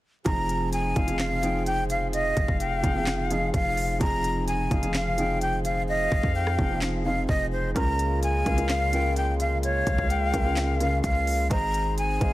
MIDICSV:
0, 0, Header, 1, 7, 480
1, 0, Start_track
1, 0, Key_signature, -4, "minor"
1, 0, Tempo, 468750
1, 264, Time_signature, 4, 2, 24, 8
1, 12627, End_track
2, 0, Start_track
2, 0, Title_t, "Flute"
2, 0, Program_c, 0, 73
2, 261, Note_on_c, 0, 82, 100
2, 714, Note_off_c, 0, 82, 0
2, 745, Note_on_c, 0, 80, 84
2, 1196, Note_off_c, 0, 80, 0
2, 1224, Note_on_c, 0, 77, 90
2, 1675, Note_off_c, 0, 77, 0
2, 1699, Note_on_c, 0, 79, 89
2, 1884, Note_off_c, 0, 79, 0
2, 1946, Note_on_c, 0, 77, 89
2, 2129, Note_off_c, 0, 77, 0
2, 2182, Note_on_c, 0, 75, 104
2, 2634, Note_off_c, 0, 75, 0
2, 2665, Note_on_c, 0, 79, 80
2, 3344, Note_off_c, 0, 79, 0
2, 3389, Note_on_c, 0, 77, 83
2, 3570, Note_off_c, 0, 77, 0
2, 3627, Note_on_c, 0, 77, 91
2, 4077, Note_off_c, 0, 77, 0
2, 4104, Note_on_c, 0, 82, 127
2, 4555, Note_off_c, 0, 82, 0
2, 4583, Note_on_c, 0, 80, 89
2, 5035, Note_off_c, 0, 80, 0
2, 5068, Note_on_c, 0, 77, 96
2, 5517, Note_off_c, 0, 77, 0
2, 5545, Note_on_c, 0, 79, 92
2, 5728, Note_off_c, 0, 79, 0
2, 5782, Note_on_c, 0, 77, 78
2, 5966, Note_off_c, 0, 77, 0
2, 6027, Note_on_c, 0, 75, 117
2, 6476, Note_off_c, 0, 75, 0
2, 6501, Note_on_c, 0, 79, 81
2, 6950, Note_off_c, 0, 79, 0
2, 7223, Note_on_c, 0, 77, 87
2, 7406, Note_off_c, 0, 77, 0
2, 7457, Note_on_c, 0, 75, 86
2, 7643, Note_off_c, 0, 75, 0
2, 7704, Note_on_c, 0, 72, 81
2, 7887, Note_off_c, 0, 72, 0
2, 7945, Note_on_c, 0, 82, 108
2, 8396, Note_off_c, 0, 82, 0
2, 8428, Note_on_c, 0, 80, 90
2, 8877, Note_off_c, 0, 80, 0
2, 8903, Note_on_c, 0, 77, 85
2, 9355, Note_off_c, 0, 77, 0
2, 9386, Note_on_c, 0, 79, 94
2, 9569, Note_off_c, 0, 79, 0
2, 9627, Note_on_c, 0, 77, 78
2, 9809, Note_off_c, 0, 77, 0
2, 9866, Note_on_c, 0, 73, 96
2, 10316, Note_off_c, 0, 73, 0
2, 10337, Note_on_c, 0, 79, 78
2, 11020, Note_off_c, 0, 79, 0
2, 11060, Note_on_c, 0, 77, 85
2, 11245, Note_off_c, 0, 77, 0
2, 11301, Note_on_c, 0, 77, 91
2, 11754, Note_off_c, 0, 77, 0
2, 11783, Note_on_c, 0, 82, 124
2, 12235, Note_off_c, 0, 82, 0
2, 12270, Note_on_c, 0, 80, 88
2, 12627, Note_off_c, 0, 80, 0
2, 12627, End_track
3, 0, Start_track
3, 0, Title_t, "Flute"
3, 0, Program_c, 1, 73
3, 981, Note_on_c, 1, 77, 97
3, 1434, Note_off_c, 1, 77, 0
3, 1467, Note_on_c, 1, 79, 82
3, 1694, Note_off_c, 1, 79, 0
3, 2192, Note_on_c, 1, 77, 113
3, 4067, Note_off_c, 1, 77, 0
3, 4824, Note_on_c, 1, 77, 90
3, 5275, Note_off_c, 1, 77, 0
3, 5307, Note_on_c, 1, 79, 81
3, 5533, Note_off_c, 1, 79, 0
3, 6027, Note_on_c, 1, 77, 123
3, 7424, Note_off_c, 1, 77, 0
3, 8659, Note_on_c, 1, 77, 101
3, 9112, Note_off_c, 1, 77, 0
3, 9144, Note_on_c, 1, 79, 85
3, 9372, Note_off_c, 1, 79, 0
3, 9866, Note_on_c, 1, 77, 124
3, 11744, Note_off_c, 1, 77, 0
3, 12502, Note_on_c, 1, 77, 92
3, 12627, Note_off_c, 1, 77, 0
3, 12627, End_track
4, 0, Start_track
4, 0, Title_t, "Felt piano"
4, 0, Program_c, 2, 0
4, 255, Note_on_c, 2, 53, 105
4, 262, Note_on_c, 2, 60, 100
4, 269, Note_on_c, 2, 63, 89
4, 275, Note_on_c, 2, 68, 109
4, 427, Control_c, 2, 64, 127
4, 709, Note_off_c, 2, 53, 0
4, 712, Note_off_c, 2, 60, 0
4, 716, Note_off_c, 2, 63, 0
4, 719, Note_off_c, 2, 68, 0
4, 974, Note_on_c, 2, 53, 74
4, 982, Note_on_c, 2, 60, 69
4, 988, Note_on_c, 2, 63, 70
4, 995, Note_on_c, 2, 68, 81
4, 1054, Note_off_c, 2, 53, 0
4, 1057, Note_off_c, 2, 60, 0
4, 1061, Note_off_c, 2, 63, 0
4, 1064, Note_off_c, 2, 68, 0
4, 1092, Note_on_c, 2, 53, 76
4, 1099, Note_on_c, 2, 60, 68
4, 1106, Note_on_c, 2, 63, 65
4, 1113, Note_on_c, 2, 68, 79
4, 1323, Note_off_c, 2, 53, 0
4, 1326, Note_off_c, 2, 60, 0
4, 1330, Note_off_c, 2, 63, 0
4, 1333, Note_off_c, 2, 68, 0
4, 1453, Note_on_c, 2, 53, 75
4, 1460, Note_on_c, 2, 60, 65
4, 1466, Note_on_c, 2, 63, 70
4, 1473, Note_on_c, 2, 68, 81
4, 2058, Note_off_c, 2, 53, 0
4, 2061, Note_off_c, 2, 60, 0
4, 2064, Note_off_c, 2, 63, 0
4, 2068, Note_off_c, 2, 68, 0
4, 2892, Note_on_c, 2, 53, 81
4, 2900, Note_on_c, 2, 60, 75
4, 2907, Note_on_c, 2, 63, 73
4, 2913, Note_on_c, 2, 68, 88
4, 2973, Note_off_c, 2, 53, 0
4, 2977, Note_off_c, 2, 60, 0
4, 2980, Note_off_c, 2, 63, 0
4, 2983, Note_off_c, 2, 68, 0
4, 3013, Note_on_c, 2, 53, 72
4, 3020, Note_on_c, 2, 60, 68
4, 3027, Note_on_c, 2, 63, 68
4, 3034, Note_on_c, 2, 68, 79
4, 3243, Note_off_c, 2, 53, 0
4, 3247, Note_off_c, 2, 60, 0
4, 3250, Note_off_c, 2, 63, 0
4, 3253, Note_off_c, 2, 68, 0
4, 3374, Note_on_c, 2, 53, 76
4, 3380, Note_on_c, 2, 60, 70
4, 3387, Note_on_c, 2, 63, 70
4, 3394, Note_on_c, 2, 68, 89
4, 3828, Note_off_c, 2, 53, 0
4, 3832, Note_off_c, 2, 60, 0
4, 3835, Note_off_c, 2, 63, 0
4, 3838, Note_off_c, 2, 68, 0
4, 4093, Note_on_c, 2, 53, 105
4, 4100, Note_on_c, 2, 60, 94
4, 4107, Note_on_c, 2, 63, 90
4, 4114, Note_on_c, 2, 68, 113
4, 4548, Note_off_c, 2, 53, 0
4, 4551, Note_off_c, 2, 60, 0
4, 4555, Note_off_c, 2, 63, 0
4, 4558, Note_off_c, 2, 68, 0
4, 4813, Note_on_c, 2, 53, 83
4, 4820, Note_on_c, 2, 60, 70
4, 4827, Note_on_c, 2, 63, 78
4, 4834, Note_on_c, 2, 68, 81
4, 4893, Note_off_c, 2, 53, 0
4, 4897, Note_off_c, 2, 60, 0
4, 4900, Note_off_c, 2, 63, 0
4, 4904, Note_off_c, 2, 68, 0
4, 4932, Note_on_c, 2, 53, 79
4, 4939, Note_on_c, 2, 60, 70
4, 4946, Note_on_c, 2, 63, 65
4, 4953, Note_on_c, 2, 68, 85
4, 5163, Note_off_c, 2, 53, 0
4, 5166, Note_off_c, 2, 60, 0
4, 5170, Note_off_c, 2, 63, 0
4, 5173, Note_off_c, 2, 68, 0
4, 5294, Note_on_c, 2, 53, 79
4, 5301, Note_on_c, 2, 60, 69
4, 5308, Note_on_c, 2, 63, 65
4, 5314, Note_on_c, 2, 68, 84
4, 5898, Note_off_c, 2, 53, 0
4, 5902, Note_off_c, 2, 60, 0
4, 5905, Note_off_c, 2, 63, 0
4, 5908, Note_off_c, 2, 68, 0
4, 6733, Note_on_c, 2, 53, 81
4, 6740, Note_on_c, 2, 60, 73
4, 6747, Note_on_c, 2, 63, 75
4, 6754, Note_on_c, 2, 68, 82
4, 6813, Note_off_c, 2, 53, 0
4, 6817, Note_off_c, 2, 60, 0
4, 6820, Note_off_c, 2, 63, 0
4, 6824, Note_off_c, 2, 68, 0
4, 6856, Note_on_c, 2, 53, 72
4, 6863, Note_on_c, 2, 60, 66
4, 6870, Note_on_c, 2, 63, 63
4, 6876, Note_on_c, 2, 68, 75
4, 7084, Note_off_c, 2, 53, 0
4, 7088, Note_off_c, 2, 60, 0
4, 7091, Note_off_c, 2, 63, 0
4, 7095, Note_off_c, 2, 68, 0
4, 7213, Note_on_c, 2, 53, 71
4, 7220, Note_on_c, 2, 60, 73
4, 7226, Note_on_c, 2, 63, 69
4, 7233, Note_on_c, 2, 68, 82
4, 7668, Note_off_c, 2, 53, 0
4, 7671, Note_off_c, 2, 60, 0
4, 7674, Note_off_c, 2, 63, 0
4, 7678, Note_off_c, 2, 68, 0
4, 7932, Note_on_c, 2, 49, 105
4, 7939, Note_on_c, 2, 61, 92
4, 7946, Note_on_c, 2, 65, 96
4, 7952, Note_on_c, 2, 70, 108
4, 7960, Control_c, 2, 64, 0
4, 8113, Control_c, 2, 64, 127
4, 8387, Note_off_c, 2, 49, 0
4, 8391, Note_off_c, 2, 61, 0
4, 8394, Note_off_c, 2, 65, 0
4, 8398, Note_off_c, 2, 70, 0
4, 8652, Note_on_c, 2, 49, 76
4, 8659, Note_on_c, 2, 61, 74
4, 8666, Note_on_c, 2, 65, 71
4, 8673, Note_on_c, 2, 70, 86
4, 8733, Note_off_c, 2, 49, 0
4, 8736, Note_off_c, 2, 61, 0
4, 8740, Note_off_c, 2, 65, 0
4, 8743, Note_off_c, 2, 70, 0
4, 8773, Note_on_c, 2, 49, 74
4, 8780, Note_on_c, 2, 61, 64
4, 8787, Note_on_c, 2, 65, 66
4, 8793, Note_on_c, 2, 70, 83
4, 9003, Note_off_c, 2, 49, 0
4, 9007, Note_off_c, 2, 61, 0
4, 9010, Note_off_c, 2, 65, 0
4, 9013, Note_off_c, 2, 70, 0
4, 9138, Note_on_c, 2, 49, 76
4, 9145, Note_on_c, 2, 61, 69
4, 9152, Note_on_c, 2, 65, 72
4, 9159, Note_on_c, 2, 70, 81
4, 9740, Note_off_c, 2, 49, 0
4, 9744, Note_off_c, 2, 61, 0
4, 9747, Note_off_c, 2, 65, 0
4, 9750, Note_off_c, 2, 70, 0
4, 10576, Note_on_c, 2, 49, 79
4, 10584, Note_on_c, 2, 61, 71
4, 10590, Note_on_c, 2, 65, 66
4, 10597, Note_on_c, 2, 70, 85
4, 10655, Note_off_c, 2, 49, 0
4, 10659, Note_off_c, 2, 61, 0
4, 10662, Note_off_c, 2, 65, 0
4, 10665, Note_off_c, 2, 70, 0
4, 10691, Note_on_c, 2, 49, 71
4, 10698, Note_on_c, 2, 61, 67
4, 10704, Note_on_c, 2, 65, 69
4, 10711, Note_on_c, 2, 70, 77
4, 10922, Note_off_c, 2, 49, 0
4, 10925, Note_off_c, 2, 61, 0
4, 10929, Note_off_c, 2, 65, 0
4, 10932, Note_off_c, 2, 70, 0
4, 11054, Note_on_c, 2, 49, 69
4, 11061, Note_on_c, 2, 61, 70
4, 11068, Note_on_c, 2, 65, 66
4, 11075, Note_on_c, 2, 70, 77
4, 11508, Note_off_c, 2, 49, 0
4, 11512, Note_off_c, 2, 61, 0
4, 11515, Note_off_c, 2, 65, 0
4, 11519, Note_off_c, 2, 70, 0
4, 11772, Note_on_c, 2, 56, 105
4, 11779, Note_on_c, 2, 68, 95
4, 11786, Note_on_c, 2, 72, 94
4, 11793, Note_on_c, 2, 75, 113
4, 11798, Control_c, 2, 64, 0
4, 11966, Control_c, 2, 64, 127
4, 12227, Note_off_c, 2, 56, 0
4, 12231, Note_off_c, 2, 68, 0
4, 12234, Note_off_c, 2, 72, 0
4, 12238, Note_off_c, 2, 75, 0
4, 12491, Note_on_c, 2, 56, 81
4, 12498, Note_on_c, 2, 68, 78
4, 12505, Note_on_c, 2, 72, 66
4, 12512, Note_on_c, 2, 75, 85
4, 12572, Note_off_c, 2, 56, 0
4, 12576, Note_off_c, 2, 68, 0
4, 12579, Note_off_c, 2, 72, 0
4, 12583, Note_off_c, 2, 75, 0
4, 12627, End_track
5, 0, Start_track
5, 0, Title_t, "Harmonium"
5, 0, Program_c, 3, 20
5, 264, Note_on_c, 3, 53, 80
5, 264, Note_on_c, 3, 60, 70
5, 264, Note_on_c, 3, 63, 71
5, 264, Note_on_c, 3, 68, 83
5, 7903, Note_off_c, 3, 53, 0
5, 7903, Note_off_c, 3, 60, 0
5, 7903, Note_off_c, 3, 63, 0
5, 7903, Note_off_c, 3, 68, 0
5, 7945, Note_on_c, 3, 49, 79
5, 7945, Note_on_c, 3, 56, 70
5, 7945, Note_on_c, 3, 58, 71
5, 7945, Note_on_c, 3, 65, 88
5, 11746, Note_off_c, 3, 49, 0
5, 11746, Note_off_c, 3, 56, 0
5, 11746, Note_off_c, 3, 58, 0
5, 11746, Note_off_c, 3, 65, 0
5, 11785, Note_on_c, 3, 56, 81
5, 11785, Note_on_c, 3, 60, 72
5, 11785, Note_on_c, 3, 63, 88
5, 12627, Note_off_c, 3, 56, 0
5, 12627, Note_off_c, 3, 60, 0
5, 12627, Note_off_c, 3, 63, 0
5, 12627, End_track
6, 0, Start_track
6, 0, Title_t, "808-style bass"
6, 0, Program_c, 4, 38
6, 264, Note_on_c, 4, 29, 113
6, 955, Note_off_c, 4, 29, 0
6, 984, Note_on_c, 4, 29, 104
6, 2383, Note_off_c, 4, 29, 0
6, 2424, Note_on_c, 4, 29, 105
6, 2539, Note_off_c, 4, 29, 0
6, 2544, Note_on_c, 4, 29, 109
6, 2889, Note_off_c, 4, 29, 0
6, 2904, Note_on_c, 4, 29, 101
6, 3595, Note_off_c, 4, 29, 0
6, 3623, Note_on_c, 4, 29, 114
6, 4084, Note_off_c, 4, 29, 0
6, 4104, Note_on_c, 4, 29, 115
6, 4795, Note_off_c, 4, 29, 0
6, 4824, Note_on_c, 4, 29, 105
6, 6223, Note_off_c, 4, 29, 0
6, 6264, Note_on_c, 4, 29, 101
6, 6379, Note_off_c, 4, 29, 0
6, 6384, Note_on_c, 4, 41, 108
6, 6729, Note_off_c, 4, 41, 0
6, 6744, Note_on_c, 4, 29, 102
6, 7435, Note_off_c, 4, 29, 0
6, 7463, Note_on_c, 4, 29, 111
6, 7924, Note_off_c, 4, 29, 0
6, 7944, Note_on_c, 4, 37, 111
6, 8635, Note_off_c, 4, 37, 0
6, 8664, Note_on_c, 4, 37, 103
6, 10063, Note_off_c, 4, 37, 0
6, 10105, Note_on_c, 4, 37, 105
6, 10219, Note_off_c, 4, 37, 0
6, 10224, Note_on_c, 4, 37, 107
6, 10569, Note_off_c, 4, 37, 0
6, 10584, Note_on_c, 4, 37, 104
6, 11275, Note_off_c, 4, 37, 0
6, 11303, Note_on_c, 4, 37, 109
6, 11764, Note_off_c, 4, 37, 0
6, 11784, Note_on_c, 4, 32, 116
6, 12475, Note_off_c, 4, 32, 0
6, 12504, Note_on_c, 4, 32, 102
6, 12627, Note_off_c, 4, 32, 0
6, 12627, End_track
7, 0, Start_track
7, 0, Title_t, "Drums"
7, 264, Note_on_c, 9, 36, 113
7, 264, Note_on_c, 9, 42, 84
7, 366, Note_off_c, 9, 36, 0
7, 366, Note_off_c, 9, 42, 0
7, 504, Note_on_c, 9, 42, 64
7, 607, Note_off_c, 9, 42, 0
7, 744, Note_on_c, 9, 42, 72
7, 846, Note_off_c, 9, 42, 0
7, 984, Note_on_c, 9, 36, 94
7, 984, Note_on_c, 9, 42, 49
7, 1086, Note_off_c, 9, 36, 0
7, 1086, Note_off_c, 9, 42, 0
7, 1104, Note_on_c, 9, 42, 79
7, 1206, Note_off_c, 9, 42, 0
7, 1220, Note_on_c, 9, 39, 93
7, 1224, Note_on_c, 9, 38, 120
7, 1224, Note_on_c, 9, 42, 72
7, 1323, Note_off_c, 9, 39, 0
7, 1326, Note_off_c, 9, 38, 0
7, 1326, Note_off_c, 9, 42, 0
7, 1464, Note_on_c, 9, 42, 78
7, 1567, Note_off_c, 9, 42, 0
7, 1704, Note_on_c, 9, 42, 71
7, 1806, Note_off_c, 9, 42, 0
7, 1944, Note_on_c, 9, 42, 73
7, 2046, Note_off_c, 9, 42, 0
7, 2184, Note_on_c, 9, 42, 87
7, 2286, Note_off_c, 9, 42, 0
7, 2424, Note_on_c, 9, 36, 112
7, 2424, Note_on_c, 9, 42, 66
7, 2526, Note_off_c, 9, 42, 0
7, 2527, Note_off_c, 9, 36, 0
7, 2544, Note_on_c, 9, 36, 100
7, 2646, Note_off_c, 9, 36, 0
7, 2664, Note_on_c, 9, 42, 72
7, 2766, Note_off_c, 9, 42, 0
7, 2904, Note_on_c, 9, 36, 91
7, 2904, Note_on_c, 9, 42, 77
7, 3007, Note_off_c, 9, 36, 0
7, 3007, Note_off_c, 9, 42, 0
7, 3141, Note_on_c, 9, 39, 98
7, 3144, Note_on_c, 9, 38, 117
7, 3144, Note_on_c, 9, 42, 73
7, 3243, Note_off_c, 9, 39, 0
7, 3246, Note_off_c, 9, 38, 0
7, 3247, Note_off_c, 9, 42, 0
7, 3384, Note_on_c, 9, 42, 85
7, 3487, Note_off_c, 9, 42, 0
7, 3623, Note_on_c, 9, 36, 88
7, 3624, Note_on_c, 9, 42, 68
7, 3726, Note_off_c, 9, 36, 0
7, 3727, Note_off_c, 9, 42, 0
7, 3864, Note_on_c, 9, 46, 72
7, 3967, Note_off_c, 9, 46, 0
7, 4104, Note_on_c, 9, 36, 115
7, 4104, Note_on_c, 9, 42, 88
7, 4206, Note_off_c, 9, 36, 0
7, 4206, Note_off_c, 9, 42, 0
7, 4344, Note_on_c, 9, 42, 65
7, 4447, Note_off_c, 9, 42, 0
7, 4584, Note_on_c, 9, 42, 72
7, 4687, Note_off_c, 9, 42, 0
7, 4824, Note_on_c, 9, 36, 91
7, 4824, Note_on_c, 9, 42, 48
7, 4926, Note_off_c, 9, 42, 0
7, 4927, Note_off_c, 9, 36, 0
7, 4944, Note_on_c, 9, 42, 79
7, 5047, Note_off_c, 9, 42, 0
7, 5061, Note_on_c, 9, 39, 98
7, 5064, Note_on_c, 9, 38, 122
7, 5064, Note_on_c, 9, 42, 75
7, 5163, Note_off_c, 9, 39, 0
7, 5166, Note_off_c, 9, 38, 0
7, 5166, Note_off_c, 9, 42, 0
7, 5304, Note_on_c, 9, 42, 80
7, 5406, Note_off_c, 9, 42, 0
7, 5544, Note_on_c, 9, 42, 68
7, 5646, Note_off_c, 9, 42, 0
7, 5784, Note_on_c, 9, 42, 71
7, 5886, Note_off_c, 9, 42, 0
7, 6264, Note_on_c, 9, 36, 110
7, 6366, Note_off_c, 9, 36, 0
7, 6383, Note_on_c, 9, 36, 100
7, 6486, Note_off_c, 9, 36, 0
7, 6624, Note_on_c, 9, 37, 101
7, 6726, Note_off_c, 9, 37, 0
7, 6744, Note_on_c, 9, 36, 95
7, 6846, Note_off_c, 9, 36, 0
7, 6980, Note_on_c, 9, 39, 92
7, 6984, Note_on_c, 9, 38, 116
7, 7083, Note_off_c, 9, 39, 0
7, 7086, Note_off_c, 9, 38, 0
7, 7463, Note_on_c, 9, 36, 92
7, 7565, Note_off_c, 9, 36, 0
7, 7944, Note_on_c, 9, 36, 117
7, 7944, Note_on_c, 9, 42, 85
7, 8046, Note_off_c, 9, 36, 0
7, 8047, Note_off_c, 9, 42, 0
7, 8184, Note_on_c, 9, 42, 66
7, 8286, Note_off_c, 9, 42, 0
7, 8424, Note_on_c, 9, 42, 70
7, 8527, Note_off_c, 9, 42, 0
7, 8664, Note_on_c, 9, 36, 91
7, 8664, Note_on_c, 9, 42, 46
7, 8766, Note_off_c, 9, 42, 0
7, 8767, Note_off_c, 9, 36, 0
7, 8784, Note_on_c, 9, 42, 80
7, 8887, Note_off_c, 9, 42, 0
7, 8901, Note_on_c, 9, 39, 94
7, 8904, Note_on_c, 9, 38, 116
7, 8904, Note_on_c, 9, 42, 73
7, 9003, Note_off_c, 9, 39, 0
7, 9006, Note_off_c, 9, 38, 0
7, 9006, Note_off_c, 9, 42, 0
7, 9144, Note_on_c, 9, 42, 79
7, 9246, Note_off_c, 9, 42, 0
7, 9384, Note_on_c, 9, 42, 71
7, 9486, Note_off_c, 9, 42, 0
7, 9624, Note_on_c, 9, 42, 74
7, 9727, Note_off_c, 9, 42, 0
7, 9864, Note_on_c, 9, 42, 86
7, 9967, Note_off_c, 9, 42, 0
7, 10104, Note_on_c, 9, 36, 110
7, 10104, Note_on_c, 9, 42, 67
7, 10207, Note_off_c, 9, 36, 0
7, 10207, Note_off_c, 9, 42, 0
7, 10224, Note_on_c, 9, 36, 99
7, 10326, Note_off_c, 9, 36, 0
7, 10344, Note_on_c, 9, 42, 73
7, 10446, Note_off_c, 9, 42, 0
7, 10584, Note_on_c, 9, 36, 92
7, 10584, Note_on_c, 9, 42, 79
7, 10686, Note_off_c, 9, 42, 0
7, 10687, Note_off_c, 9, 36, 0
7, 10820, Note_on_c, 9, 39, 92
7, 10824, Note_on_c, 9, 38, 122
7, 10824, Note_on_c, 9, 42, 75
7, 10923, Note_off_c, 9, 39, 0
7, 10926, Note_off_c, 9, 38, 0
7, 10926, Note_off_c, 9, 42, 0
7, 11064, Note_on_c, 9, 42, 84
7, 11167, Note_off_c, 9, 42, 0
7, 11303, Note_on_c, 9, 36, 90
7, 11304, Note_on_c, 9, 42, 70
7, 11406, Note_off_c, 9, 36, 0
7, 11406, Note_off_c, 9, 42, 0
7, 11544, Note_on_c, 9, 46, 72
7, 11646, Note_off_c, 9, 46, 0
7, 11784, Note_on_c, 9, 36, 113
7, 11784, Note_on_c, 9, 42, 88
7, 11886, Note_off_c, 9, 36, 0
7, 11886, Note_off_c, 9, 42, 0
7, 12024, Note_on_c, 9, 42, 63
7, 12127, Note_off_c, 9, 42, 0
7, 12264, Note_on_c, 9, 42, 72
7, 12367, Note_off_c, 9, 42, 0
7, 12504, Note_on_c, 9, 36, 95
7, 12504, Note_on_c, 9, 42, 49
7, 12606, Note_off_c, 9, 36, 0
7, 12606, Note_off_c, 9, 42, 0
7, 12627, End_track
0, 0, End_of_file